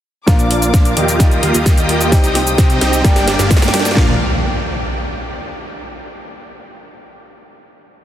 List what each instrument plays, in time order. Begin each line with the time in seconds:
0.26 analog synth bass A#1, grand piano A#2 F3 A#3 D4 F4, supersaw synth A#3 D4 F4 D5 F5, string section A#4 D5 F5 D6, kick, snare, closed hi-hat, riser, cabasa
0.39 closed hi-hat, cabasa
0.51 open hi-hat
0.62 closed hi-hat, cabasa
0.74 analog synth bass A#1, supersaw synth A#3 D4 F4 D5 F5, kick, snare, closed hi-hat, cabasa
0.85 closed hi-hat, cabasa
0.97 analog synth bass D#2, supersaw synth A#3 F4 G4 D#5 G5, open hi-hat
1.08 closed hi-hat, cabasa
1.19 grand piano G3 A#3 D#4 F4, string section G5 D#6, kick, snare, closed hi-hat, cabasa
1.31 closed hi-hat, cabasa
1.43 analog synth bass D#2, supersaw synth A#3 F4 G4 D#5 F5, open hi-hat
1.54 analog synth bass D#2, supersaw synth A#3 F4 G4 D#5 F5, closed hi-hat, cabasa
1.66 kick, snare, closed hi-hat, cabasa
1.77 analog synth bass D#2, supersaw synth A#3 F4 G4 D#5 G5, closed hi-hat, cabasa
1.89 open hi-hat
2.01 closed hi-hat, cabasa
2.11 grand piano C3 G3 C4 D#4 G4, string section C5 D#5, kick, snare, closed hi-hat, cabasa
2.24 analog synth bass C2, supersaw synth C4 D#4 G4 D#5 G5, closed hi-hat, cabasa
2.35 snare, open hi-hat
2.47 closed hi-hat, cabasa
2.58 analog synth bass C2, supersaw synth C4 D#4 G4 D#5 G5, kick, snare, closed hi-hat, cabasa
2.70 closed hi-hat, cabasa
2.81 analog synth bass C2, supersaw synth C4 D#4 G4 D#5 G5, snare, open hi-hat
2.93 closed hi-hat, cabasa
3.03 analog synth bass G1, grand piano G2 G3 A#3 D4 G4, supersaw synth A#3 D4 G4 D5 G5, string section A#4 D5 D6, kick, snare, closed hi-hat, cabasa
3.16 snare, closed hi-hat, cabasa
3.28 snare, open hi-hat
3.39 analog synth bass G1, supersaw synth A#3 D4 G4 D5 F5, snare, closed hi-hat, cabasa
3.51 kick, snare, closed hi-hat, cabasa
3.57 snare
3.62 snare, closed hi-hat, cabasa
3.68 snare
3.74 analog synth bass G2, supersaw synth A#3 D4 G4 D5 G5, snare, open hi-hat
3.80 snare
3.85 snare, closed hi-hat, cabasa
3.91 snare
3.95 analog synth bass A#1, grand piano F3 A#3 D4 F4, supersaw synth A#3 D4 F4 D5 F5, string section D4 F4 A#4 F5, kick, snare, clap, impact